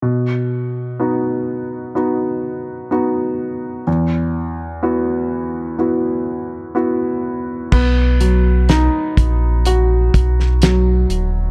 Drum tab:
CC |----------------|----------------|x---------------|
HH |----------------|----------------|--x-x-x-x-x-x-x-|
SD |----------------|----------------|----o------oo---|
BD |----------------|----------------|o-----o---o-----|